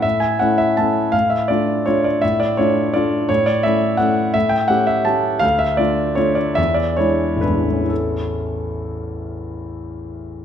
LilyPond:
\new Staff \with { instrumentName = "Grand piano" } { \time 3/4 \key a \major \tempo 4 = 162 << { e''8 gis''8 fis''8 e''8 a''4 | f''8 e''8 d''4 cis''8 d''8 | e''8 d''8 cis''4 d''4 | cis''8 d''8 e''4 fis''4 |
e''8 g''8 fis''8 e''8 a''4 | f''8 e''8 d''4 cis''8 d''8 | e''8 d''8 cis''4 b'8 r8 | <a,, e, e a cis' e' a'>2.~ |
<a,, e, e a cis' e' a'>2. | } \\ { a,4 <a cis' e'>4 <a cis' e'>4 | a,4 <a d' f'>4 <a d' f'>4 | a,4 <a d' f'>4 <a d' f'>4 | a,4 <a cis' e'>4 <a cis' e'>4 |
a,4 <a cis' g'>4 <a cis' g'>4 | d,4 <a d' f'>4 <a d' f'>4 | e,4 <gis d' e'>4 <gis d' e'>4 | r2. |
r2. | } >> }